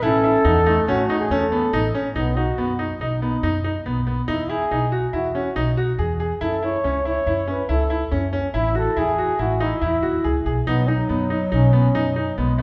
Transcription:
0.02 0.34 A1 medium
0.02 0.47 C#4 medium
0.02 0.15 E4 medium
0.02 0.88 A4 loud
0.24 0.36 E4 medium
0.45 0.77 E2 medium
0.45 0.68 B3 medium
0.45 0.57 D#4 medium
0.66 1.94 A3 medium
0.66 0.79 D#4 medium
0.87 1.04 A1 medium
0.87 1.01 C#4 medium
0.87 1.18 F#4 medium
1.10 1.22 D#4 medium
1.20 1.32 G#4 medium
1.30 1.62 E2 medium
1.30 1.43 C#4 medium
1.30 1.94 A4 medium
1.52 1.64 B3 medium
1.73 1.89 A1 medium
1.73 1.86 D#4 medium
1.95 2.07 C#4 medium
2.15 2.48 B1 medium
2.15 2.38 B3 medium
2.15 2.28 D#4 medium
2.36 2.49 D#4 medium
2.36 2.79 F#4 medium
2.58 2.90 F#2 medium
2.58 2.71 B3 medium
2.79 2.92 D#4 medium
3.00 3.32 B1 medium
3.00 3.21 D#4 medium
3.00 3.13 D#4 medium
3.22 3.35 B3 medium
3.22 3.62 D#4 medium
3.43 3.75 F#2 medium
3.43 3.56 D#4 medium
3.64 3.77 D#4 medium
3.86 4.18 B1 medium
3.86 3.98 B3 medium
4.07 4.19 B3 medium
4.28 4.61 E2 medium
4.28 4.41 D#4 medium
4.28 4.51 E4 medium
4.49 4.62 E4 medium
4.49 4.92 G#4 medium
4.71 5.03 B1 medium
4.71 4.84 D#4 medium
4.92 5.05 F#4 medium
5.13 5.46 E2 medium
5.13 5.26 E4 medium
5.13 5.34 F#4 medium
5.35 5.47 C#4 medium
5.35 5.75 F#4 medium
5.56 5.89 B1 medium
5.56 5.69 D#4 medium
5.77 5.90 F#4 medium
5.99 6.31 E2 medium
5.99 6.11 G#4 medium
6.20 6.33 G#4 medium
6.41 6.74 F#2 medium
6.41 6.54 E4 medium
6.41 6.66 A4 medium
6.62 6.75 E4 medium
6.62 7.06 C#5 medium
6.84 7.17 C#2 medium
6.84 6.97 C#4 medium
7.05 7.18 E4 medium
7.05 7.46 C#5 medium
7.27 7.59 F#2 medium
7.27 7.39 E4 medium
7.47 7.60 C#4 medium
7.47 7.69 B4 medium
7.69 8.02 C#2 medium
7.69 7.82 E4 medium
7.69 8.10 A4 medium
7.90 8.03 E4 medium
8.12 8.44 F#2 medium
8.12 8.24 C#4 medium
8.33 8.45 C#4 medium
8.54 8.87 A1 medium
8.54 8.67 E4 medium
8.54 8.76 E4 medium
8.75 8.88 F#4 medium
8.75 9.00 A4 medium
8.97 9.29 E2 medium
8.97 9.09 E4 medium
8.97 9.40 G#4 medium
9.18 9.31 F#4 medium
9.39 9.72 A1 medium
9.39 9.52 E4 medium
9.39 9.63 F#4 medium
9.60 9.73 D#4 medium
9.60 10.47 E4 medium
9.81 9.98 E2 medium
9.81 9.94 E4 medium
10.03 10.23 D#2 medium
10.03 10.15 F#4 medium
10.24 10.44 C#2 medium
10.24 10.37 G#4 medium
10.45 10.65 B1 medium
10.45 10.59 G#4 medium
10.67 11.00 B1 medium
10.67 12.39 F#3 medium
10.67 10.89 B3 medium
10.67 10.80 D#4 medium
10.88 11.31 D#4 medium
10.88 11.01 D#4 medium
11.09 11.42 F#2 medium
11.09 11.22 B3 medium
11.30 11.43 D#4 medium
11.52 11.85 B1 medium
11.52 11.72 C#4 medium
11.52 11.65 D#4 medium
11.73 11.86 B3 medium
11.73 12.13 C#4 medium
11.95 12.28 F#2 medium
11.95 12.08 D#4 medium
12.16 12.29 D#4 medium
12.38 12.62 B1 medium
12.38 12.60 G#3 medium
12.38 12.50 B3 medium
12.58 12.62 A3 medium
12.58 12.62 B3 medium

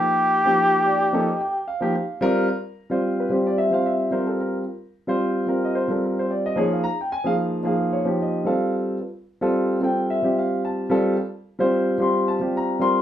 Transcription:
0.00 0.41 F3 medium
0.00 0.41 A#3 medium
0.00 0.42 D#4 medium
0.00 0.42 G4 medium
0.00 1.67 G4 medium
0.45 1.09 F3 medium
0.45 1.09 A#3 medium
0.45 1.09 D#4 medium
0.45 1.10 G4 medium
0.86 1.11 D5 medium
1.13 1.26 F3 medium
1.13 1.27 A#3 medium
1.13 1.26 D#4 medium
1.13 1.27 A4 medium
1.13 1.39 D#5 medium
1.28 1.34 D#4 soft
1.28 1.35 G4 soft
1.40 1.66 G5 medium
1.68 2.18 F5 medium
1.80 1.93 F3 medium
1.80 1.93 A#3 medium
1.80 1.92 D#4 medium
1.80 1.94 G4 medium
1.94 2.01 D#4 soft
1.94 2.02 G4 soft
2.21 2.47 G3 loud
2.21 2.47 C4 medium
2.21 2.47 F4 medium
2.21 2.48 A#4 loud
2.48 2.56 F4 soft
2.48 2.56 A#4 soft
2.90 3.28 G3 medium
2.90 3.28 C4 medium
2.90 3.28 F4 medium
2.90 3.28 C5 medium
3.20 3.31 B4 medium
3.30 3.69 G3 medium
3.30 3.69 C4 medium
3.30 3.69 F4 medium
3.30 3.70 G4 medium
3.30 3.46 C5 medium
3.47 3.58 D5 medium
3.58 3.72 E5 medium
3.71 4.10 G3 medium
3.71 4.10 C4 medium
3.71 4.11 F4 medium
3.71 4.11 C5 medium
3.71 3.85 F5 medium
3.86 4.12 E5 medium
4.11 4.62 G3 medium
4.11 4.63 C4 medium
4.11 4.63 F4 medium
4.11 4.39 A#4 medium
4.11 4.26 C5 medium
4.27 4.39 A4 medium
4.41 4.56 A#4 medium
4.66 4.73 F4 soft
4.66 4.74 A#4 soft
5.07 5.45 G3 medium
5.07 5.45 C4 medium
5.07 5.45 F4 medium
5.07 5.46 C5 medium
5.47 5.86 G3 medium
5.47 5.86 C4 medium
5.47 5.87 F4 medium
5.47 5.87 A#4 medium
5.64 5.76 D#5 medium
5.75 5.89 C5 medium
5.88 6.52 G3 medium
5.88 6.52 C4 medium
5.88 6.52 F4 medium
5.88 6.03 A4 medium
5.88 6.03 A#4 medium
6.04 6.17 A#4 medium
6.19 6.30 C5 medium
6.31 6.44 D5 medium
6.46 6.57 D#5 medium
6.56 6.81 F3 medium
6.56 6.82 A#3 medium
6.56 6.82 D#4 medium
6.56 6.82 G#4 medium
6.56 6.71 C#5 medium
6.73 6.84 F5 medium
6.83 6.90 D#4 soft
6.83 6.91 F4 soft
6.83 6.98 A#5 loud
7.01 7.12 G5 medium
7.12 7.25 G#5 medium
7.24 7.62 F3 medium
7.24 7.62 A#3 medium
7.24 7.62 D#4 medium
7.24 7.63 G#4 medium
7.24 7.34 F5 medium
7.63 8.03 F3 medium
7.63 8.03 A#3 medium
7.63 8.03 D#4 medium
7.63 8.04 G#4 medium
7.63 7.92 F5 medium
7.93 8.19 C#5 medium
8.05 8.46 F3 medium
8.05 8.46 A#3 medium
8.05 8.46 D#4 medium
8.05 8.46 G4 medium
8.22 8.47 D#5 medium
8.45 8.96 G3 medium
8.45 8.97 C4 medium
8.45 8.97 F4 medium
8.45 8.97 A4 medium
8.45 8.73 F5 medium
8.99 9.07 F4 soft
8.99 9.08 B4 soft
9.41 9.79 G3 medium
9.41 9.79 C4 medium
9.41 9.79 F4 medium
9.41 9.80 A4 medium
9.81 10.20 G3 medium
9.81 10.21 C4 medium
9.81 10.21 F4 medium
9.81 10.21 A4 medium
9.81 10.09 G5 medium
10.10 10.36 E5 medium
10.22 10.86 G3 medium
10.22 10.86 C4 medium
10.22 10.87 F4 medium
10.22 10.87 G4 medium
10.39 10.64 F5 medium
10.65 10.90 A5 medium
10.90 11.16 G3 medium
10.90 11.16 C4 medium
10.90 11.15 F4 medium
10.90 11.16 A4 medium
11.17 11.24 F4 soft
11.17 11.25 A4 soft
11.59 11.96 G3 medium
11.59 11.97 C4 medium
11.59 11.97 F4 medium
11.59 11.97 C5 medium
11.98 12.37 G3 medium
11.98 12.38 C4 medium
11.98 12.38 F4 medium
11.98 12.38 G4 medium
11.98 12.27 C6 medium
12.28 12.54 A5 medium
12.40 12.78 G3 medium
12.40 12.78 C4 medium
12.40 12.79 F4 medium
12.40 12.81 G4 medium
12.57 12.82 A#5 medium
12.79 13.02 G3 medium
12.79 13.02 C4 medium
12.79 13.02 F4 medium
12.79 13.02 A#4 medium
12.79 12.98 C6 medium

